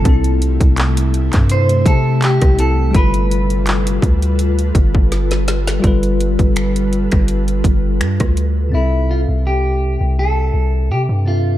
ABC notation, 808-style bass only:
X:1
M:4/4
L:1/16
Q:"Swing 16ths" 1/4=83
K:C
V:1 name="808-style bass" clef=bass
C,,3 C,,4 G,,3 C,3 C,,3 | G,,,6 D,,4 G,,,6 | G,,,3 G,,,4 G,,,3 G,,,2 G,, D,,3 | C,,3 C,,4 C,,3 C,,2 C, G,,3 |]